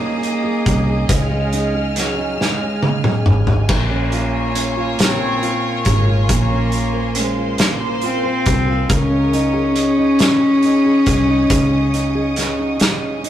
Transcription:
0.00 0.62 C#2 medium
0.00 1.11 A#3 loud
0.00 0.66 C#4 medium
0.00 0.21 D#4 medium
0.00 0.43 G#4 medium
0.00 3.26 G#4 loud
0.00 3.66 G#4 medium
0.00 3.66 D#5 medium
0.00 8.86 G#5 medium
0.00 1.07 D#6 medium
0.22 0.86 D#4 medium
0.22 closed hi-hat soft
0.44 1.74 G#4 medium
0.66 1.07 C2 loud
0.66 1.30 C#4 medium
0.66 kick medium
0.66 closed hi-hat medium
0.87 1.52 D#4 medium
1.08 3.22 C#2 medium
1.08 2.39 C#3 medium
1.08 3.66 F6 medium
1.08 kick loud
1.08 closed hi-hat medium
1.14 2.02 G#3 loud
1.30 1.95 C#4 medium
1.53 2.17 D#4 medium
1.53 closed hi-hat soft
1.75 3.04 G#4 medium
1.96 2.61 C#4 medium
1.96 snare soft
1.96 closed hi-hat medium
2.00 2.44 F#3 medium
2.18 2.83 D#4 medium
2.40 3.78 C#3 medium
2.40 3.27 G#3 medium
2.40 snare medium
2.62 3.26 C#4 medium
2.83 3.45 D#4 medium
2.83 high tom medium
3.04 3.78 G#4 medium
3.04 mid tom medium
3.26 3.67 G#1 medium
3.26 3.91 C#4 medium
3.26 mid tom medium
3.46 3.77 D#4 medium
3.46 floor tom medium
3.69 5.82 A#1 loud
3.69 4.97 A#2 medium
3.69 5.02 A#3 loud
3.69 8.86 A#4 medium
3.69 7.12 C#5 loud
3.69 8.86 F5 medium
3.69 8.86 C6 medium
3.69 kick loud
3.69 crash medium
3.91 4.54 C#4 medium
4.12 4.76 F4 medium
4.12 closed hi-hat soft
4.55 5.85 C#4 medium
4.55 closed hi-hat medium
4.77 5.41 F4 medium
4.98 6.28 A#2 medium
4.98 5.87 C4 medium
4.98 snare loud
4.98 closed hi-hat medium
5.42 6.05 F4 medium
5.42 closed hi-hat soft
5.85 6.27 G#1 medium
5.85 6.51 C#4 medium
5.85 kick medium
5.85 closed hi-hat medium
5.90 6.29 G#3 medium
6.07 6.72 F4 medium
6.29 8.42 A#1 medium
6.29 7.57 A#2 medium
6.29 7.21 A#3 loud
6.29 kick loud
6.29 closed hi-hat loud
6.51 7.15 C#4 medium
6.72 7.36 F4 medium
6.72 closed hi-hat medium
6.93 8.22 C5 medium
7.15 8.26 C#4 medium
7.15 8.86 C5 loud
7.15 closed hi-hat medium
7.19 7.63 G#3 medium
7.37 8.01 F4 medium
7.58 8.98 A#2 medium
7.58 8.07 A#3 loud
7.58 snare loud
7.58 closed hi-hat medium
8.01 8.67 F4 medium
8.01 closed hi-hat soft
8.06 8.94 C4 loud
8.23 8.98 C5 medium
8.46 8.87 C2 medium
8.46 kick medium
8.46 closed hi-hat medium
8.68 8.98 F4 medium
8.89 11.03 C#2 loud
8.89 10.19 C#3 medium
8.89 13.25 C#4 loud
8.89 13.29 G#4 medium
8.89 9.76 A#4 loud
8.89 13.29 D#5 medium
8.89 13.29 C#6 medium
8.89 13.29 D#6 medium
8.89 kick loud
8.89 closed hi-hat medium
9.10 9.74 C#4 medium
9.33 9.96 D#4 medium
9.33 closed hi-hat medium
9.53 10.84 G#4 medium
9.75 10.41 C#4 medium
9.75 12.37 G#4 loud
9.75 closed hi-hat medium
9.97 10.62 D#4 medium
10.19 snare loud
10.19 closed hi-hat medium
10.41 11.07 C#4 medium
10.62 11.26 D#4 medium
10.62 closed hi-hat soft
10.85 12.14 G#4 medium
11.06 11.48 C2 medium
11.06 11.70 C#4 medium
11.06 kick medium
11.06 closed hi-hat medium
11.27 11.92 D#4 medium
11.50 13.29 C#2 loud
11.50 12.79 C#3 medium
11.50 kick loud
11.50 closed hi-hat loud
11.71 12.37 C#4 medium
11.94 12.58 D#4 medium
11.94 closed hi-hat soft
12.15 13.29 G#4 medium
12.36 13.02 C#4 medium
12.36 12.80 F#4 medium
12.36 snare soft
12.36 closed hi-hat medium
12.59 13.22 D#4 medium
12.80 13.29 C#3 medium
12.80 13.29 G#4 medium
12.80 snare loud
12.80 closed hi-hat medium
13.02 13.29 C#4 soft
13.23 13.29 D#4 medium
13.23 closed hi-hat soft

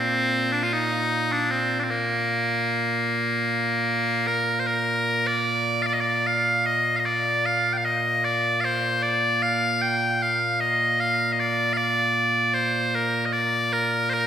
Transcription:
0.00 14.27 A#2 medium
0.00 1.91 A#3 medium
0.00 0.52 C4 loud
0.52 0.63 D4 medium
0.63 0.73 F4 medium
0.73 1.32 D#4 loud
1.32 1.51 D4 loud
1.51 1.79 C4 medium
1.79 1.91 C4 medium
1.79 1.83 D4 medium
1.91 4.27 A#3 medium
4.27 4.60 A#4 medium
4.60 4.67 C5 medium
4.67 5.27 A#4 medium
5.27 5.82 D5 loud
5.82 5.94 D5 medium
5.82 5.86 F5 medium
5.94 6.01 D#5 medium
6.01 6.27 D5 medium
6.27 6.66 F5 loud
6.66 6.96 D#5 medium
6.96 7.05 D#5 medium
6.96 6.99 F5 medium
7.05 7.46 D5 loud
7.46 7.73 F5 loud
7.73 7.78 G5 medium
7.78 7.85 F5 medium
7.85 8.24 D#5 loud
8.24 8.61 D5 medium
8.61 9.02 C5 medium
8.61 8.65 F5 medium
9.02 9.42 D5 loud
9.42 9.82 F5 loud
9.82 10.22 G5 loud
10.22 10.60 F5 medium
10.60 11.00 D#5 loud
11.00 11.32 F5 loud
11.32 11.40 D#5 medium
11.40 11.73 D5 medium
11.73 12.54 D5 loud
11.73 11.77 F5 loud
12.54 12.95 C5 medium
12.95 13.26 A#4 medium
13.26 13.33 D#5 medium
13.33 13.73 D5 loud
13.73 14.10 A#4 medium
14.10 14.27 A#4 loud
14.10 14.13 C5 loud

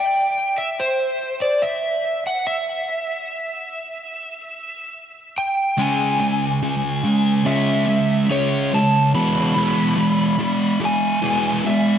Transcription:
0.00 0.60 G5 medium
0.58 0.79 E5 medium
0.80 1.43 C5 medium
1.42 1.63 D5 medium
1.62 2.26 E5 medium
2.27 2.45 F#5 medium
2.47 4.93 E5 medium
5.38 5.81 G5 medium
5.78 6.18 C#3 medium
5.78 6.18 G#3 medium
5.78 6.19 C#4 medium
5.78 7.53 G#5 medium
6.20 6.58 C#3 medium
6.20 6.58 G#3 medium
6.63 7.01 C#3 medium
6.63 7.01 G#3 medium
7.04 7.42 C#3 medium
7.04 7.43 G#3 medium
7.45 7.85 C#3 medium
7.45 7.86 G#3 medium
7.45 7.86 C#4 medium
7.45 8.33 E5 medium
7.87 8.26 C#3 medium
7.87 8.26 G#3 medium
8.30 8.70 C#3 medium
8.30 8.70 G#3 medium
8.30 8.70 C#4 medium
8.30 8.74 C#5 medium
8.74 9.11 C#3 medium
8.74 9.11 G#3 medium
8.74 9.15 A5 medium
9.14 9.54 E3 medium
9.14 9.54 G#3 medium
9.14 9.54 B3 loud
9.14 10.85 B5 loud
9.55 9.95 E3 medium
9.55 9.95 G#3 medium
9.55 9.96 B3 medium
9.96 10.35 E3 medium
9.96 10.35 G#3 medium
10.39 10.77 E3 medium
10.39 10.77 G#3 medium
10.80 11.19 E3 medium
10.80 11.19 G#3 medium
10.85 11.70 G#5 medium
11.22 11.62 E3 medium
11.22 11.63 G#3 medium
11.22 11.63 B3 medium
11.65 11.98 E3 medium
11.65 11.98 G#3 medium
11.65 11.98 E5 medium

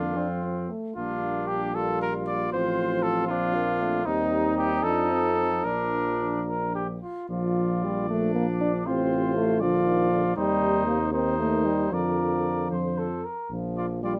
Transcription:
0.00 0.68 F2 soft
0.00 0.18 D3 soft
0.00 0.15 A#3 soft
0.00 0.18 D4 soft
0.00 0.70 F4 soft
0.16 0.70 F3 soft
0.16 0.70 C4 soft
0.16 0.28 D4 soft
0.43 0.71 C4 soft
0.70 0.96 A3 soft
0.96 2.49 A#1 soft
0.96 2.54 G3 soft
0.96 1.71 A#3 soft
0.96 1.71 D4 soft
0.96 1.49 F4 medium
1.48 1.77 G4 soft
1.75 2.56 A#3 soft
1.75 2.51 F4 soft
1.75 2.01 A4 medium
2.02 2.13 A#4 soft
2.27 2.52 D5 medium
2.52 3.31 A1 soft
2.52 3.29 F3 soft
2.52 4.05 C4 soft
2.52 3.32 F4 soft
2.52 3.04 C5 medium
3.03 3.27 A4 medium
3.27 4.06 A#1 soft
3.27 3.56 F3 soft
3.27 4.05 D4 soft
3.27 4.07 F4 medium
3.54 3.82 A#3 soft
3.81 4.06 A3 medium
4.05 4.85 D#2 soft
4.05 4.82 G3 soft
4.05 4.85 C4 soft
4.05 5.62 D#4 soft
4.05 4.57 D#4 medium
4.58 4.85 G4 medium
4.83 5.65 F2 soft
4.83 5.64 F3 soft
4.83 5.12 D4 soft
4.83 5.66 A4 medium
5.11 5.37 C4 soft
5.38 5.66 C4 soft
5.64 7.00 A#1 soft
5.64 7.00 F3 soft
5.64 7.02 D4 soft
5.64 6.41 D4 soft
5.64 6.47 A#4 medium
6.48 6.73 A#4 soft
6.75 6.87 G4 soft
7.03 7.29 F4 soft
7.29 8.88 A#1 soft
7.29 7.85 F3 soft
7.29 8.05 F4 soft
7.29 8.83 D5 soft
7.84 8.09 G3 medium
8.09 8.82 F3 soft
8.09 8.35 A3 medium
8.09 8.88 D4 soft
8.35 8.47 A#3 medium
8.61 8.72 D4 medium
8.86 9.63 A1 medium
8.86 9.63 C3 medium
8.86 9.36 C4 medium
8.86 9.61 F4 soft
8.86 9.62 C5 soft
9.37 9.64 A3 medium
9.61 10.36 A#1 medium
9.61 9.87 D3 medium
9.61 10.36 F3 medium
9.61 10.34 F4 soft
9.61 10.36 D5 medium
9.86 10.11 D#3 medium
10.12 10.23 D3 soft
10.36 11.89 D#2 medium
10.36 11.14 C3 medium
10.36 10.86 G3 medium
10.36 11.09 D#4 medium
10.36 11.09 C5 medium
10.87 10.99 A#3 medium
11.13 11.91 D#3 medium
11.13 11.39 C4 medium
11.13 11.93 D#4 soft
11.13 11.95 C5 soft
11.39 11.67 A3 medium
11.65 11.93 G3 soft
11.91 12.70 F2 soft
11.91 13.08 D3 soft
11.91 13.24 F3 medium
11.91 12.71 A#4 soft
11.91 12.70 D5 soft
12.71 13.23 F2 soft
12.71 13.23 C5 soft
12.71 13.00 C5 soft
12.98 13.26 A4 soft
13.24 13.51 A#4 soft
13.50 14.17 A#1 soft
13.50 13.99 F3 medium
13.77 13.87 F4 soft
13.77 13.87 D5 soft
14.03 14.20 G3 medium
14.03 14.13 F4 soft
14.03 14.13 D5 soft

